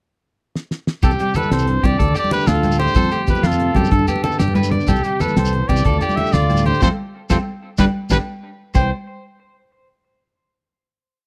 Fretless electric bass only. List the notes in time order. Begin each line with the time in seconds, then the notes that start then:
1.03 C2
1.51 C2
1.83 C2
2.00 D2
2.48 D2
2.96 F2
3.43 F2
3.76 F#2
3.91 G2
4.40 G2
4.89 C2
5.36 C2
5.70 C2
5.86 D2
6.34 D2
6.82 F2
7.31 F2
7.79 G1
8.11 G1
8.75 C2